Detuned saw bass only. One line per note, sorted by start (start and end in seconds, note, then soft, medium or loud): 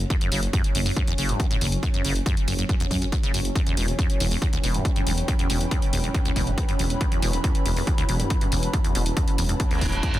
0.32 0.47 F#1 loud
0.75 0.91 F#1 loud
1.18 1.34 F#1 loud
1.61 1.77 F#1 medium
2.04 2.20 F#1 loud
2.48 2.63 F#1 medium
2.91 3.06 F#2 medium
3.34 3.50 F#1 loud
3.77 3.93 E1 loud
4.20 4.36 E1 loud
4.63 4.79 E1 loud
5.07 5.22 E1 medium
5.50 5.65 E1 loud
5.93 6.09 E1 medium
6.36 6.52 E1 medium
6.79 6.95 E1 loud
7.22 7.38 E1 loud
7.66 7.81 E1 loud
8.09 8.24 E1 loud
8.52 8.68 E1 medium
8.95 9.11 E1 loud
9.38 9.54 E1 medium
9.81 9.97 D1 medium